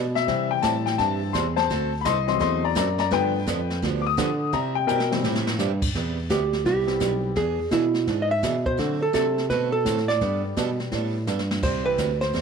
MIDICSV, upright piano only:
0, 0, Header, 1, 2, 480
1, 0, Start_track
1, 0, Key_signature, 0, "major"
1, 0, Tempo, 354610
1, 380, Time_signature, 4, 2, 24, 8
1, 16804, End_track
2, 0, Start_track
2, 0, Title_t, "Upright piano"
2, 0, Program_c, 0, 0
2, 208, Note_on_c, 0, 76, 97
2, 359, Note_on_c, 0, 52, 54
2, 362, Note_on_c, 0, 55, 52
2, 373, Note_on_c, 0, 60, 57
2, 673, Note_off_c, 0, 76, 0
2, 688, Note_on_c, 0, 79, 92
2, 844, Note_on_c, 0, 81, 93
2, 854, Note_off_c, 0, 79, 0
2, 1150, Note_off_c, 0, 81, 0
2, 1162, Note_on_c, 0, 79, 86
2, 1330, Note_off_c, 0, 79, 0
2, 1330, Note_on_c, 0, 81, 100
2, 1799, Note_off_c, 0, 81, 0
2, 1802, Note_on_c, 0, 84, 88
2, 2109, Note_off_c, 0, 84, 0
2, 2117, Note_on_c, 0, 72, 84
2, 2120, Note_on_c, 0, 81, 100
2, 2231, Note_off_c, 0, 52, 0
2, 2233, Note_off_c, 0, 55, 0
2, 2238, Note_off_c, 0, 60, 0
2, 2566, Note_off_c, 0, 72, 0
2, 2588, Note_off_c, 0, 81, 0
2, 2723, Note_on_c, 0, 83, 75
2, 2763, Note_off_c, 0, 83, 0
2, 2775, Note_on_c, 0, 75, 96
2, 2785, Note_on_c, 0, 84, 100
2, 3061, Note_off_c, 0, 75, 0
2, 3073, Note_on_c, 0, 52, 58
2, 3074, Note_off_c, 0, 84, 0
2, 3078, Note_on_c, 0, 54, 52
2, 3081, Note_on_c, 0, 75, 81
2, 3088, Note_on_c, 0, 60, 63
2, 3094, Note_on_c, 0, 84, 84
2, 3233, Note_off_c, 0, 75, 0
2, 3242, Note_off_c, 0, 84, 0
2, 3253, Note_on_c, 0, 75, 83
2, 3262, Note_on_c, 0, 84, 96
2, 3541, Note_off_c, 0, 75, 0
2, 3558, Note_off_c, 0, 84, 0
2, 3577, Note_on_c, 0, 74, 78
2, 3584, Note_on_c, 0, 82, 88
2, 3695, Note_off_c, 0, 52, 0
2, 3698, Note_off_c, 0, 54, 0
2, 3703, Note_off_c, 0, 60, 0
2, 3729, Note_off_c, 0, 74, 0
2, 3733, Note_off_c, 0, 82, 0
2, 3749, Note_on_c, 0, 74, 78
2, 3754, Note_on_c, 0, 82, 86
2, 4029, Note_off_c, 0, 74, 0
2, 4037, Note_off_c, 0, 82, 0
2, 4051, Note_on_c, 0, 74, 86
2, 4058, Note_on_c, 0, 82, 99
2, 4206, Note_off_c, 0, 74, 0
2, 4216, Note_off_c, 0, 82, 0
2, 4226, Note_on_c, 0, 53, 58
2, 4230, Note_on_c, 0, 57, 51
2, 4230, Note_on_c, 0, 71, 93
2, 4236, Note_on_c, 0, 59, 61
2, 4239, Note_on_c, 0, 79, 105
2, 4578, Note_off_c, 0, 53, 0
2, 4579, Note_off_c, 0, 57, 0
2, 4583, Note_off_c, 0, 59, 0
2, 5125, Note_off_c, 0, 71, 0
2, 5156, Note_off_c, 0, 79, 0
2, 5436, Note_on_c, 0, 86, 68
2, 5461, Note_off_c, 0, 86, 0
2, 5503, Note_on_c, 0, 87, 96
2, 6122, Note_off_c, 0, 87, 0
2, 6140, Note_on_c, 0, 82, 92
2, 6434, Note_off_c, 0, 82, 0
2, 6435, Note_on_c, 0, 79, 96
2, 6584, Note_off_c, 0, 79, 0
2, 6593, Note_on_c, 0, 70, 90
2, 6604, Note_on_c, 0, 79, 103
2, 6888, Note_off_c, 0, 70, 0
2, 6906, Note_off_c, 0, 79, 0
2, 6912, Note_on_c, 0, 52, 56
2, 6916, Note_on_c, 0, 55, 56
2, 6921, Note_on_c, 0, 60, 64
2, 7194, Note_off_c, 0, 52, 0
2, 7197, Note_off_c, 0, 55, 0
2, 7199, Note_off_c, 0, 60, 0
2, 9288, Note_on_c, 0, 55, 73
2, 9300, Note_on_c, 0, 59, 62
2, 9302, Note_on_c, 0, 60, 70
2, 9308, Note_on_c, 0, 67, 77
2, 9309, Note_on_c, 0, 64, 71
2, 9921, Note_off_c, 0, 55, 0
2, 9927, Note_off_c, 0, 59, 0
2, 9927, Note_off_c, 0, 60, 0
2, 9930, Note_off_c, 0, 67, 0
2, 9931, Note_off_c, 0, 64, 0
2, 11878, Note_on_c, 0, 54, 60
2, 11882, Note_on_c, 0, 57, 56
2, 11886, Note_on_c, 0, 60, 56
2, 11891, Note_on_c, 0, 62, 54
2, 11892, Note_on_c, 0, 66, 69
2, 12164, Note_off_c, 0, 54, 0
2, 12166, Note_off_c, 0, 57, 0
2, 12168, Note_off_c, 0, 60, 0
2, 12171, Note_off_c, 0, 62, 0
2, 12171, Note_off_c, 0, 66, 0
2, 12353, Note_on_c, 0, 54, 60
2, 12359, Note_on_c, 0, 57, 54
2, 12361, Note_on_c, 0, 60, 56
2, 12367, Note_on_c, 0, 62, 55
2, 12378, Note_on_c, 0, 69, 64
2, 12642, Note_off_c, 0, 54, 0
2, 12645, Note_off_c, 0, 57, 0
2, 12646, Note_off_c, 0, 60, 0
2, 12649, Note_off_c, 0, 62, 0
2, 12655, Note_off_c, 0, 69, 0
2, 13813, Note_on_c, 0, 55, 64
2, 13818, Note_on_c, 0, 57, 60
2, 13829, Note_on_c, 0, 59, 55
2, 13829, Note_on_c, 0, 62, 57
2, 13834, Note_on_c, 0, 67, 65
2, 15155, Note_off_c, 0, 55, 0
2, 15157, Note_off_c, 0, 57, 0
2, 15162, Note_off_c, 0, 59, 0
2, 15162, Note_off_c, 0, 62, 0
2, 15165, Note_off_c, 0, 67, 0
2, 16030, Note_on_c, 0, 52, 69
2, 16038, Note_on_c, 0, 55, 64
2, 16039, Note_on_c, 0, 60, 60
2, 16043, Note_on_c, 0, 64, 62
2, 16052, Note_on_c, 0, 67, 75
2, 16194, Note_off_c, 0, 52, 0
2, 16198, Note_off_c, 0, 55, 0
2, 16199, Note_off_c, 0, 60, 0
2, 16200, Note_off_c, 0, 64, 0
2, 16205, Note_off_c, 0, 67, 0
2, 16804, End_track
0, 0, End_of_file